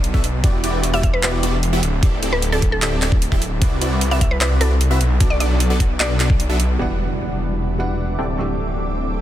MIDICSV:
0, 0, Header, 1, 8, 480
1, 0, Start_track
1, 0, Key_signature, 1, "minor"
1, 0, Tempo, 397351
1, 528, Time_signature, 4, 2, 24, 8
1, 11129, End_track
2, 0, Start_track
2, 0, Title_t, "Ambient pad"
2, 0, Program_c, 0, 92
2, 8209, Note_on_c, 0, 86, 86
2, 9888, Note_on_c, 0, 72, 78
2, 9888, Note_on_c, 0, 76, 69
2, 9889, Note_on_c, 0, 79, 71
2, 11129, Note_off_c, 0, 72, 0
2, 11129, Note_off_c, 0, 76, 0
2, 11129, Note_off_c, 0, 79, 0
2, 11129, Note_off_c, 0, 86, 0
2, 11129, End_track
3, 0, Start_track
3, 0, Title_t, "Synth pluck"
3, 0, Program_c, 1, 84
3, 1131, Note_on_c, 1, 76, 96
3, 1206, Note_off_c, 1, 76, 0
3, 1250, Note_on_c, 1, 76, 79
3, 1326, Note_off_c, 1, 76, 0
3, 1372, Note_on_c, 1, 71, 93
3, 1447, Note_off_c, 1, 71, 0
3, 1492, Note_on_c, 1, 71, 79
3, 1567, Note_off_c, 1, 71, 0
3, 2809, Note_on_c, 1, 71, 92
3, 2929, Note_off_c, 1, 71, 0
3, 3049, Note_on_c, 1, 69, 95
3, 3169, Note_off_c, 1, 69, 0
3, 3289, Note_on_c, 1, 69, 97
3, 3769, Note_off_c, 1, 69, 0
3, 4970, Note_on_c, 1, 76, 88
3, 5045, Note_off_c, 1, 76, 0
3, 5089, Note_on_c, 1, 76, 75
3, 5166, Note_off_c, 1, 76, 0
3, 5208, Note_on_c, 1, 71, 93
3, 5284, Note_off_c, 1, 71, 0
3, 5327, Note_on_c, 1, 71, 82
3, 5405, Note_off_c, 1, 71, 0
3, 5566, Note_on_c, 1, 69, 94
3, 5688, Note_off_c, 1, 69, 0
3, 6407, Note_on_c, 1, 74, 88
3, 6484, Note_off_c, 1, 74, 0
3, 6527, Note_on_c, 1, 74, 76
3, 6605, Note_off_c, 1, 74, 0
3, 7248, Note_on_c, 1, 74, 95
3, 7608, Note_off_c, 1, 74, 0
3, 11129, End_track
4, 0, Start_track
4, 0, Title_t, "Supersaw synth"
4, 0, Program_c, 2, 81
4, 168, Note_on_c, 2, 66, 89
4, 169, Note_on_c, 2, 59, 100
4, 169, Note_on_c, 2, 62, 91
4, 169, Note_on_c, 2, 69, 92
4, 169, Note_on_c, 2, 76, 113
4, 269, Note_off_c, 2, 59, 0
4, 269, Note_off_c, 2, 62, 0
4, 269, Note_off_c, 2, 66, 0
4, 269, Note_off_c, 2, 69, 0
4, 269, Note_off_c, 2, 76, 0
4, 528, Note_on_c, 2, 64, 78
4, 528, Note_on_c, 2, 67, 80
4, 529, Note_on_c, 2, 59, 87
4, 529, Note_on_c, 2, 66, 75
4, 529, Note_on_c, 2, 74, 95
4, 739, Note_off_c, 2, 67, 0
4, 740, Note_off_c, 2, 59, 0
4, 740, Note_off_c, 2, 64, 0
4, 740, Note_off_c, 2, 66, 0
4, 740, Note_off_c, 2, 74, 0
4, 769, Note_on_c, 2, 59, 82
4, 769, Note_on_c, 2, 64, 75
4, 769, Note_on_c, 2, 67, 76
4, 769, Note_on_c, 2, 74, 89
4, 770, Note_on_c, 2, 66, 73
4, 1100, Note_off_c, 2, 59, 0
4, 1100, Note_off_c, 2, 64, 0
4, 1100, Note_off_c, 2, 66, 0
4, 1100, Note_off_c, 2, 67, 0
4, 1100, Note_off_c, 2, 74, 0
4, 1128, Note_on_c, 2, 64, 76
4, 1129, Note_on_c, 2, 59, 83
4, 1129, Note_on_c, 2, 66, 82
4, 1129, Note_on_c, 2, 67, 79
4, 1129, Note_on_c, 2, 74, 93
4, 1289, Note_off_c, 2, 64, 0
4, 1289, Note_off_c, 2, 67, 0
4, 1290, Note_off_c, 2, 59, 0
4, 1290, Note_off_c, 2, 66, 0
4, 1290, Note_off_c, 2, 74, 0
4, 1489, Note_on_c, 2, 59, 83
4, 1489, Note_on_c, 2, 64, 79
4, 1489, Note_on_c, 2, 66, 80
4, 1489, Note_on_c, 2, 67, 78
4, 1489, Note_on_c, 2, 74, 96
4, 1704, Note_off_c, 2, 74, 0
4, 1705, Note_off_c, 2, 59, 0
4, 1705, Note_off_c, 2, 64, 0
4, 1705, Note_off_c, 2, 66, 0
4, 1705, Note_off_c, 2, 67, 0
4, 1728, Note_on_c, 2, 59, 80
4, 1728, Note_on_c, 2, 64, 71
4, 1728, Note_on_c, 2, 66, 74
4, 1728, Note_on_c, 2, 74, 87
4, 1729, Note_on_c, 2, 67, 71
4, 1890, Note_off_c, 2, 59, 0
4, 1890, Note_off_c, 2, 64, 0
4, 1890, Note_off_c, 2, 66, 0
4, 1890, Note_off_c, 2, 67, 0
4, 1890, Note_off_c, 2, 74, 0
4, 2088, Note_on_c, 2, 59, 100
4, 2088, Note_on_c, 2, 64, 92
4, 2088, Note_on_c, 2, 66, 93
4, 2088, Note_on_c, 2, 67, 96
4, 2089, Note_on_c, 2, 76, 111
4, 2189, Note_off_c, 2, 59, 0
4, 2189, Note_off_c, 2, 64, 0
4, 2189, Note_off_c, 2, 66, 0
4, 2189, Note_off_c, 2, 67, 0
4, 2189, Note_off_c, 2, 76, 0
4, 2448, Note_on_c, 2, 64, 81
4, 2448, Note_on_c, 2, 69, 77
4, 2448, Note_on_c, 2, 74, 95
4, 2449, Note_on_c, 2, 60, 89
4, 2449, Note_on_c, 2, 67, 77
4, 2659, Note_off_c, 2, 64, 0
4, 2659, Note_off_c, 2, 74, 0
4, 2660, Note_off_c, 2, 60, 0
4, 2660, Note_off_c, 2, 67, 0
4, 2660, Note_off_c, 2, 69, 0
4, 2689, Note_on_c, 2, 67, 71
4, 2689, Note_on_c, 2, 74, 90
4, 2690, Note_on_c, 2, 60, 78
4, 2690, Note_on_c, 2, 64, 70
4, 2690, Note_on_c, 2, 69, 75
4, 3020, Note_off_c, 2, 60, 0
4, 3020, Note_off_c, 2, 64, 0
4, 3020, Note_off_c, 2, 67, 0
4, 3020, Note_off_c, 2, 69, 0
4, 3020, Note_off_c, 2, 74, 0
4, 3050, Note_on_c, 2, 60, 83
4, 3050, Note_on_c, 2, 64, 77
4, 3050, Note_on_c, 2, 69, 80
4, 3051, Note_on_c, 2, 67, 78
4, 3051, Note_on_c, 2, 74, 93
4, 3210, Note_off_c, 2, 60, 0
4, 3210, Note_off_c, 2, 64, 0
4, 3210, Note_off_c, 2, 67, 0
4, 3210, Note_off_c, 2, 69, 0
4, 3210, Note_off_c, 2, 74, 0
4, 3409, Note_on_c, 2, 64, 76
4, 3409, Note_on_c, 2, 67, 81
4, 3410, Note_on_c, 2, 60, 82
4, 3410, Note_on_c, 2, 69, 77
4, 3410, Note_on_c, 2, 74, 93
4, 3625, Note_off_c, 2, 60, 0
4, 3625, Note_off_c, 2, 64, 0
4, 3625, Note_off_c, 2, 67, 0
4, 3625, Note_off_c, 2, 69, 0
4, 3625, Note_off_c, 2, 74, 0
4, 3650, Note_on_c, 2, 60, 82
4, 3650, Note_on_c, 2, 64, 73
4, 3650, Note_on_c, 2, 67, 72
4, 3650, Note_on_c, 2, 69, 72
4, 3650, Note_on_c, 2, 74, 89
4, 3810, Note_off_c, 2, 60, 0
4, 3811, Note_off_c, 2, 64, 0
4, 3811, Note_off_c, 2, 67, 0
4, 3811, Note_off_c, 2, 69, 0
4, 3811, Note_off_c, 2, 74, 0
4, 4009, Note_on_c, 2, 64, 94
4, 4009, Note_on_c, 2, 67, 91
4, 4009, Note_on_c, 2, 69, 92
4, 4009, Note_on_c, 2, 76, 111
4, 4010, Note_on_c, 2, 60, 96
4, 4109, Note_off_c, 2, 60, 0
4, 4109, Note_off_c, 2, 64, 0
4, 4109, Note_off_c, 2, 67, 0
4, 4109, Note_off_c, 2, 69, 0
4, 4109, Note_off_c, 2, 76, 0
4, 4367, Note_on_c, 2, 64, 80
4, 4367, Note_on_c, 2, 71, 79
4, 4368, Note_on_c, 2, 60, 86
4, 4368, Note_on_c, 2, 66, 78
4, 4368, Note_on_c, 2, 74, 94
4, 4579, Note_off_c, 2, 60, 0
4, 4579, Note_off_c, 2, 64, 0
4, 4579, Note_off_c, 2, 66, 0
4, 4579, Note_off_c, 2, 71, 0
4, 4579, Note_off_c, 2, 74, 0
4, 4608, Note_on_c, 2, 60, 77
4, 4608, Note_on_c, 2, 64, 74
4, 4608, Note_on_c, 2, 66, 72
4, 4608, Note_on_c, 2, 71, 76
4, 4608, Note_on_c, 2, 74, 88
4, 4939, Note_off_c, 2, 74, 0
4, 4940, Note_off_c, 2, 60, 0
4, 4940, Note_off_c, 2, 64, 0
4, 4940, Note_off_c, 2, 66, 0
4, 4940, Note_off_c, 2, 71, 0
4, 4967, Note_on_c, 2, 66, 75
4, 4967, Note_on_c, 2, 71, 80
4, 4968, Note_on_c, 2, 60, 82
4, 4968, Note_on_c, 2, 64, 76
4, 4968, Note_on_c, 2, 74, 99
4, 5129, Note_off_c, 2, 60, 0
4, 5129, Note_off_c, 2, 64, 0
4, 5129, Note_off_c, 2, 66, 0
4, 5129, Note_off_c, 2, 71, 0
4, 5129, Note_off_c, 2, 74, 0
4, 5326, Note_on_c, 2, 60, 83
4, 5327, Note_on_c, 2, 64, 75
4, 5327, Note_on_c, 2, 66, 79
4, 5327, Note_on_c, 2, 71, 80
4, 5327, Note_on_c, 2, 74, 91
4, 5543, Note_off_c, 2, 60, 0
4, 5543, Note_off_c, 2, 74, 0
4, 5544, Note_off_c, 2, 64, 0
4, 5544, Note_off_c, 2, 66, 0
4, 5544, Note_off_c, 2, 71, 0
4, 5567, Note_on_c, 2, 60, 80
4, 5567, Note_on_c, 2, 64, 73
4, 5567, Note_on_c, 2, 66, 73
4, 5567, Note_on_c, 2, 71, 75
4, 5567, Note_on_c, 2, 74, 87
4, 5729, Note_off_c, 2, 60, 0
4, 5729, Note_off_c, 2, 64, 0
4, 5729, Note_off_c, 2, 66, 0
4, 5729, Note_off_c, 2, 71, 0
4, 5729, Note_off_c, 2, 74, 0
4, 5928, Note_on_c, 2, 60, 96
4, 5928, Note_on_c, 2, 64, 90
4, 5928, Note_on_c, 2, 66, 94
4, 5928, Note_on_c, 2, 76, 113
4, 5929, Note_on_c, 2, 71, 92
4, 6028, Note_off_c, 2, 60, 0
4, 6029, Note_off_c, 2, 64, 0
4, 6029, Note_off_c, 2, 66, 0
4, 6029, Note_off_c, 2, 71, 0
4, 6029, Note_off_c, 2, 76, 0
4, 6286, Note_on_c, 2, 59, 84
4, 6286, Note_on_c, 2, 62, 75
4, 6286, Note_on_c, 2, 66, 80
4, 6287, Note_on_c, 2, 69, 82
4, 6287, Note_on_c, 2, 74, 92
4, 6498, Note_off_c, 2, 59, 0
4, 6498, Note_off_c, 2, 62, 0
4, 6498, Note_off_c, 2, 66, 0
4, 6499, Note_off_c, 2, 69, 0
4, 6499, Note_off_c, 2, 74, 0
4, 6526, Note_on_c, 2, 59, 78
4, 6526, Note_on_c, 2, 62, 75
4, 6526, Note_on_c, 2, 69, 71
4, 6527, Note_on_c, 2, 66, 76
4, 6527, Note_on_c, 2, 74, 86
4, 6858, Note_off_c, 2, 69, 0
4, 6859, Note_off_c, 2, 59, 0
4, 6859, Note_off_c, 2, 62, 0
4, 6859, Note_off_c, 2, 66, 0
4, 6859, Note_off_c, 2, 74, 0
4, 6887, Note_on_c, 2, 59, 86
4, 6887, Note_on_c, 2, 62, 78
4, 6887, Note_on_c, 2, 66, 78
4, 6887, Note_on_c, 2, 69, 79
4, 6887, Note_on_c, 2, 74, 94
4, 7048, Note_off_c, 2, 59, 0
4, 7049, Note_off_c, 2, 62, 0
4, 7049, Note_off_c, 2, 66, 0
4, 7049, Note_off_c, 2, 69, 0
4, 7049, Note_off_c, 2, 74, 0
4, 7247, Note_on_c, 2, 59, 85
4, 7247, Note_on_c, 2, 62, 78
4, 7247, Note_on_c, 2, 66, 79
4, 7247, Note_on_c, 2, 69, 77
4, 7247, Note_on_c, 2, 74, 93
4, 7463, Note_off_c, 2, 74, 0
4, 7464, Note_off_c, 2, 59, 0
4, 7464, Note_off_c, 2, 62, 0
4, 7464, Note_off_c, 2, 66, 0
4, 7464, Note_off_c, 2, 69, 0
4, 7487, Note_on_c, 2, 59, 81
4, 7487, Note_on_c, 2, 62, 73
4, 7487, Note_on_c, 2, 66, 76
4, 7487, Note_on_c, 2, 74, 90
4, 7488, Note_on_c, 2, 69, 73
4, 7649, Note_off_c, 2, 59, 0
4, 7649, Note_off_c, 2, 62, 0
4, 7649, Note_off_c, 2, 66, 0
4, 7649, Note_off_c, 2, 69, 0
4, 7649, Note_off_c, 2, 74, 0
4, 7846, Note_on_c, 2, 59, 100
4, 7846, Note_on_c, 2, 62, 93
4, 7846, Note_on_c, 2, 66, 95
4, 7846, Note_on_c, 2, 69, 93
4, 7846, Note_on_c, 2, 76, 105
4, 7947, Note_off_c, 2, 62, 0
4, 7948, Note_off_c, 2, 59, 0
4, 7948, Note_off_c, 2, 66, 0
4, 7948, Note_off_c, 2, 69, 0
4, 7948, Note_off_c, 2, 76, 0
4, 8205, Note_on_c, 2, 66, 70
4, 8205, Note_on_c, 2, 74, 90
4, 8206, Note_on_c, 2, 59, 78
4, 8206, Note_on_c, 2, 64, 72
4, 8206, Note_on_c, 2, 67, 71
4, 9858, Note_off_c, 2, 59, 0
4, 9858, Note_off_c, 2, 64, 0
4, 9858, Note_off_c, 2, 66, 0
4, 9858, Note_off_c, 2, 67, 0
4, 9858, Note_off_c, 2, 74, 0
4, 9889, Note_on_c, 2, 60, 74
4, 9889, Note_on_c, 2, 64, 67
4, 9889, Note_on_c, 2, 67, 68
4, 9889, Note_on_c, 2, 69, 70
4, 9889, Note_on_c, 2, 74, 86
4, 11129, Note_off_c, 2, 60, 0
4, 11129, Note_off_c, 2, 64, 0
4, 11129, Note_off_c, 2, 67, 0
4, 11129, Note_off_c, 2, 69, 0
4, 11129, Note_off_c, 2, 74, 0
4, 11129, End_track
5, 0, Start_track
5, 0, Title_t, "Felt piano"
5, 0, Program_c, 3, 0
5, 8184, Note_on_c, 3, 52, 86
5, 8196, Note_on_c, 3, 55, 80
5, 8207, Note_on_c, 3, 59, 83
5, 8221, Note_on_c, 3, 62, 80
5, 8232, Note_on_c, 3, 78, 95
5, 8438, Control_c, 3, 64, 127
5, 9367, Note_off_c, 3, 52, 0
5, 9373, Note_off_c, 3, 55, 0
5, 9379, Note_off_c, 3, 59, 0
5, 9386, Note_off_c, 3, 62, 0
5, 9391, Note_off_c, 3, 78, 0
5, 9396, Note_on_c, 3, 52, 81
5, 9402, Note_on_c, 3, 55, 77
5, 9408, Note_on_c, 3, 59, 75
5, 9415, Note_on_c, 3, 62, 76
5, 9420, Note_on_c, 3, 78, 92
5, 9867, Note_off_c, 3, 52, 0
5, 9871, Note_off_c, 3, 55, 0
5, 9874, Note_off_c, 3, 59, 0
5, 9877, Note_off_c, 3, 62, 0
5, 9880, Note_off_c, 3, 78, 0
5, 9905, Control_c, 3, 64, 0
5, 10096, Control_c, 3, 64, 127
5, 10105, Note_on_c, 3, 52, 85
5, 10116, Note_on_c, 3, 57, 79
5, 10129, Note_on_c, 3, 60, 81
5, 10140, Note_on_c, 3, 62, 79
5, 10152, Note_on_c, 3, 67, 94
5, 11129, Note_off_c, 3, 52, 0
5, 11129, Note_off_c, 3, 57, 0
5, 11129, Note_off_c, 3, 60, 0
5, 11129, Note_off_c, 3, 62, 0
5, 11129, Note_off_c, 3, 67, 0
5, 11129, End_track
6, 0, Start_track
6, 0, Title_t, "Detuned saw bass"
6, 0, Program_c, 4, 39
6, 0, Note_on_c, 4, 35, 90
6, 504, Note_off_c, 4, 35, 0
6, 529, Note_on_c, 4, 28, 91
6, 2185, Note_off_c, 4, 28, 0
6, 2209, Note_on_c, 4, 26, 90
6, 4345, Note_off_c, 4, 26, 0
6, 4369, Note_on_c, 4, 36, 96
6, 6025, Note_off_c, 4, 36, 0
6, 6047, Note_on_c, 4, 35, 96
6, 8184, Note_off_c, 4, 35, 0
6, 8207, Note_on_c, 4, 28, 86
6, 9864, Note_off_c, 4, 28, 0
6, 9889, Note_on_c, 4, 26, 88
6, 11129, Note_off_c, 4, 26, 0
6, 11129, End_track
7, 0, Start_track
7, 0, Title_t, "Impact"
7, 0, Program_c, 5, 103
7, 8208, Note_on_c, 5, 60, 68
7, 10128, Note_off_c, 5, 60, 0
7, 11129, End_track
8, 0, Start_track
8, 0, Title_t, "Drums"
8, 48, Note_on_c, 9, 42, 72
8, 168, Note_off_c, 9, 42, 0
8, 169, Note_on_c, 9, 36, 67
8, 288, Note_on_c, 9, 42, 66
8, 290, Note_off_c, 9, 36, 0
8, 409, Note_off_c, 9, 42, 0
8, 529, Note_on_c, 9, 36, 119
8, 529, Note_on_c, 9, 42, 77
8, 650, Note_off_c, 9, 36, 0
8, 650, Note_off_c, 9, 42, 0
8, 769, Note_on_c, 9, 42, 67
8, 890, Note_off_c, 9, 42, 0
8, 1009, Note_on_c, 9, 42, 82
8, 1129, Note_off_c, 9, 42, 0
8, 1249, Note_on_c, 9, 36, 66
8, 1249, Note_on_c, 9, 42, 63
8, 1369, Note_off_c, 9, 36, 0
8, 1370, Note_off_c, 9, 42, 0
8, 1489, Note_on_c, 9, 39, 116
8, 1489, Note_on_c, 9, 42, 76
8, 1610, Note_off_c, 9, 39, 0
8, 1610, Note_off_c, 9, 42, 0
8, 1729, Note_on_c, 9, 42, 67
8, 1850, Note_off_c, 9, 42, 0
8, 1969, Note_on_c, 9, 42, 80
8, 2090, Note_off_c, 9, 42, 0
8, 2210, Note_on_c, 9, 42, 66
8, 2330, Note_off_c, 9, 42, 0
8, 2449, Note_on_c, 9, 36, 120
8, 2450, Note_on_c, 9, 42, 80
8, 2569, Note_off_c, 9, 36, 0
8, 2571, Note_off_c, 9, 42, 0
8, 2689, Note_on_c, 9, 42, 70
8, 2809, Note_off_c, 9, 42, 0
8, 2929, Note_on_c, 9, 42, 81
8, 3049, Note_off_c, 9, 42, 0
8, 3169, Note_on_c, 9, 36, 64
8, 3169, Note_on_c, 9, 42, 68
8, 3289, Note_off_c, 9, 42, 0
8, 3290, Note_off_c, 9, 36, 0
8, 3408, Note_on_c, 9, 39, 117
8, 3408, Note_on_c, 9, 42, 78
8, 3529, Note_off_c, 9, 39, 0
8, 3529, Note_off_c, 9, 42, 0
8, 3648, Note_on_c, 9, 39, 62
8, 3648, Note_on_c, 9, 42, 68
8, 3769, Note_off_c, 9, 39, 0
8, 3769, Note_off_c, 9, 42, 0
8, 3769, Note_on_c, 9, 36, 104
8, 3889, Note_on_c, 9, 42, 77
8, 3890, Note_off_c, 9, 36, 0
8, 4009, Note_on_c, 9, 36, 60
8, 4010, Note_off_c, 9, 42, 0
8, 4128, Note_on_c, 9, 42, 66
8, 4130, Note_off_c, 9, 36, 0
8, 4249, Note_off_c, 9, 42, 0
8, 4368, Note_on_c, 9, 36, 112
8, 4368, Note_on_c, 9, 42, 82
8, 4489, Note_off_c, 9, 36, 0
8, 4489, Note_off_c, 9, 42, 0
8, 4609, Note_on_c, 9, 42, 75
8, 4729, Note_off_c, 9, 42, 0
8, 4848, Note_on_c, 9, 42, 88
8, 4969, Note_off_c, 9, 42, 0
8, 5088, Note_on_c, 9, 36, 62
8, 5088, Note_on_c, 9, 42, 72
8, 5209, Note_off_c, 9, 36, 0
8, 5209, Note_off_c, 9, 42, 0
8, 5327, Note_on_c, 9, 39, 116
8, 5327, Note_on_c, 9, 42, 81
8, 5448, Note_off_c, 9, 39, 0
8, 5448, Note_off_c, 9, 42, 0
8, 5567, Note_on_c, 9, 42, 71
8, 5688, Note_off_c, 9, 42, 0
8, 5808, Note_on_c, 9, 42, 86
8, 5929, Note_off_c, 9, 42, 0
8, 6049, Note_on_c, 9, 42, 73
8, 6169, Note_off_c, 9, 42, 0
8, 6287, Note_on_c, 9, 42, 82
8, 6288, Note_on_c, 9, 36, 120
8, 6408, Note_off_c, 9, 42, 0
8, 6409, Note_off_c, 9, 36, 0
8, 6528, Note_on_c, 9, 42, 75
8, 6649, Note_off_c, 9, 42, 0
8, 6768, Note_on_c, 9, 42, 91
8, 6889, Note_off_c, 9, 42, 0
8, 7008, Note_on_c, 9, 36, 63
8, 7008, Note_on_c, 9, 42, 73
8, 7129, Note_off_c, 9, 36, 0
8, 7129, Note_off_c, 9, 42, 0
8, 7248, Note_on_c, 9, 39, 111
8, 7248, Note_on_c, 9, 42, 83
8, 7369, Note_off_c, 9, 39, 0
8, 7369, Note_off_c, 9, 42, 0
8, 7489, Note_on_c, 9, 39, 59
8, 7489, Note_on_c, 9, 42, 71
8, 7609, Note_on_c, 9, 36, 108
8, 7610, Note_off_c, 9, 39, 0
8, 7610, Note_off_c, 9, 42, 0
8, 7729, Note_off_c, 9, 36, 0
8, 7729, Note_on_c, 9, 42, 83
8, 7849, Note_off_c, 9, 42, 0
8, 7969, Note_on_c, 9, 42, 75
8, 8089, Note_off_c, 9, 42, 0
8, 11129, End_track
0, 0, End_of_file